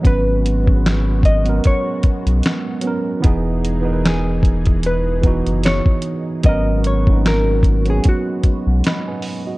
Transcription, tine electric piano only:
0.01 F#3 B3
0.05 C#4 B4
0.64 F#3 B3 C#4
0.70 G#4
0.76 B4
1.44 F#3 B3 C#4
1.49 A#4
2.81 F#3 B3 C#4
2.87 A#4
3.20 E3 B3 D#4
3.26 G#4
3.81 E3 B3 D#4
3.87 A#4
3.93 B4
5.22 E3 B3 D#4
5.27 F#4
6.43 F#3 B3 C#4
6.49 A#4
7.06 F#3 A#3 C#4
7.12 B3 D#4
7.85 F#3 B3 C#4
7.91 C#5
8.86 D#5 B5
9.08 B4 G#5
9.47 F#4 D#5

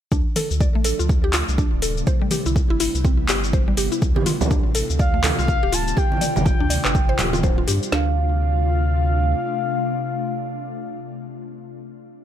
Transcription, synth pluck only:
0.12 D4
0.36 A4
0.61 D5
0.75 A3
0.85 A4
0.99 F4
1.24 G4
1.34 F4
1.58 D4
1.82 A4
2.07 C5
2.22 G3
2.31 G4
2.46 E4
2.70 E4
2.80 E4
3.05 C4
3.29 G4
3.53 C5
3.68 G3
3.77 G4
3.92 E4
4.16 G4
4.26 F4
4.51 D4
4.75 A4
4.99 D5
5.14 A3
5.24 A4
5.39 F4
5.63 G4
5.72 F4
5.97 G4
6.21 D5
6.46 G5
6.60 D4
6.70 D5
6.85 B4
7.09 C5
7.19 G4
7.33 F4
7.43 C5
7.58 F4
7.68 G4
7.92 D4

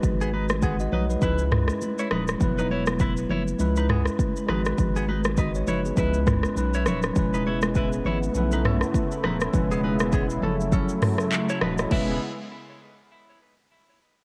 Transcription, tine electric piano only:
Already playing: G#3 D#4 F#4 B4
0.63 F#5
0.80 F#4 D#5
0.92 C#5
1.10 D#4 B4
1.19 G#3 C#4 E4
1.24 B4
2.38 F#3 B3 E4
2.43 B4
3.59 G#3 C#4 E4 B4
4.46 G#3 D#4 F#4
4.51 B4
5.38 F#4 D#5
5.55 C#5
5.67 D#4 B4
5.85 B3 G#4
5.96 G#3 C#4 E4 B4
6.55 F#3 C#4 D#4 B4
7.13 G#3 C#4 E4
7.18 B4
8.32 A3 C#4 E4
8.37 B4
9.53 G#3 C#4 E4 B4
10.40 F#3 C#4 E4
10.45 A4
11.49 E4 C#5
11.62 F#4 D#5
11.79 E4 C#5
11.91 G#3 C#4 E4 B4

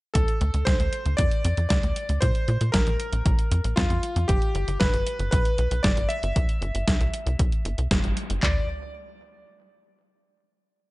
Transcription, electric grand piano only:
0.14 A4
0.65 C5
1.17 D5
1.69 D5
2.21 C5
2.72 A#4
3.76 F4
4.28 G4
4.80 B4
5.31 B4
5.83 D5
6.09 E5
8.43 D5

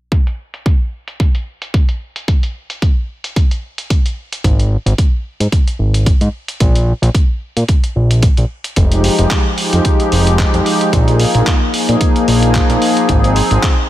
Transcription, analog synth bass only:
4.44 G#1
4.86 G#1
5.40 G#2
5.79 G#1
6.21 G#2
6.61 A#1
7.02 A#1
7.57 A#2
7.96 A#1
8.38 A#1
8.77 F1
9.19 F1
9.73 F2
10.12 F1
10.54 F2
10.93 A#1
11.35 A#1
11.89 A#2
12.28 A#1
12.70 A#2
13.09 G#1
13.51 G#1

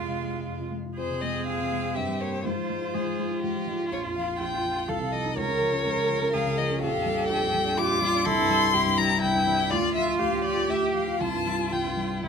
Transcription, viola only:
Already playing: G#3
0.98 C4
2.45 F4
4.89 A4
5.37 A#4
6.82 A4
7.78 G4
8.02 F4
8.26 E4
8.74 E4
9.71 F4
10.20 G4
11.21 F4
12.23 E4

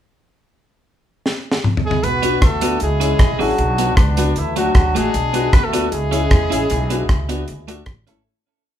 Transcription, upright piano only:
2.23 B3 D4 F#4
2.62 B3 D4 F#4
3.01 C#4 E4 G#4
3.39 C#4 E4 G#4
3.78 B3 D4 F#4
4.17 B3 D4 F#4
4.57 A3 D4 F#4
4.95 A3 D4 F#4
5.34 B3 D4 F#4
5.73 B3 D4 F#4
6.12 C#4 E4 G#4
6.51 C#4 E4 G#4
6.91 B3 D4 F#4
7.29 B3 D4 F#4
7.68 A3 D4 F#4
8.07 A3 C#4 E4

